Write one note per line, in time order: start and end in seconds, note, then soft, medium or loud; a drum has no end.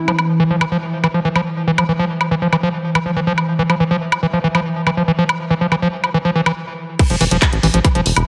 0.00 6.57 E3 medium
0.08 0.12 F3 medium
0.08 high woodblock soft
0.19 high woodblock soft
0.40 0.44 E3 loud
0.50 0.56 F3 medium
0.61 0.65 E3 loud
0.61 high woodblock medium
0.72 0.77 F3 loud
1.04 1.07 E3 loud
1.04 high woodblock soft
1.14 1.20 F3 medium
1.25 1.29 E3 loud
1.36 1.41 F3 loud
1.36 high woodblock soft
1.67 1.71 E3 loud
1.78 1.84 F3 medium
1.78 high woodblock medium
1.89 1.93 E3 loud
1.99 2.05 F3 loud
2.21 high woodblock soft
2.31 2.35 E3 loud
2.42 2.48 F3 medium
2.53 2.56 E3 loud
2.53 high woodblock soft
2.63 2.69 F3 loud
2.95 2.99 E3 loud
2.95 high woodblock medium
3.06 3.11 F3 medium
3.16 3.20 E3 loud
3.27 3.33 F3 medium
3.38 high woodblock soft
3.59 3.63 E3 loud
3.70 3.75 F3 medium
3.70 high woodblock soft
3.80 3.84 E3 loud
3.91 3.97 F3 medium
4.12 high woodblock medium
4.23 4.27 E3 loud
4.33 4.39 F3 medium
4.44 4.48 E3 loud
4.55 4.60 F3 loud
4.55 high woodblock soft
4.87 4.90 E3 loud
4.87 high woodblock soft
4.97 5.03 F3 medium
5.08 5.12 E3 loud
5.19 5.24 F3 loud
5.29 high woodblock medium
5.50 5.54 E3 loud
5.61 5.67 F3 medium
5.72 5.75 E3 loud
5.72 high woodblock soft
5.82 5.88 F3 loud
6.04 high woodblock soft
6.14 6.18 E3 loud
6.25 6.31 F3 medium
6.36 6.41 E3 medium
6.46 6.52 E3 loud
6.46 high woodblock medium
6.99 8.27 E3 medium
6.99 7.03 E3 loud
6.99 kick loud
6.99 closed hi-hat medium
6.99 crash loud
6.99 high woodblock soft
7.10 7.16 E1 medium
7.10 7.16 F3 medium
7.10 closed hi-hat medium
7.21 7.27 E1 loud
7.21 7.24 E3 loud
7.21 open hi-hat loud
7.31 7.38 E1 medium
7.31 7.37 F3 loud
7.31 closed hi-hat medium
7.42 kick loud
7.42 clap loud
7.42 closed hi-hat medium
7.42 high woodblock medium
7.53 7.59 A1 loud
7.53 closed hi-hat medium
7.63 7.70 A1 loud
7.63 7.67 E3 loud
7.63 open hi-hat medium
7.74 7.80 A1 medium
7.74 7.80 F3 medium
7.74 closed hi-hat medium
7.84 7.88 E3 loud
7.84 kick loud
7.84 closed hi-hat medium
7.84 high woodblock soft
7.95 8.01 E1 medium
7.95 8.01 F3 loud
7.95 closed hi-hat medium
8.06 8.12 E1 loud
8.06 open hi-hat loud
8.16 8.23 E1 medium
8.16 closed hi-hat medium
8.16 high woodblock soft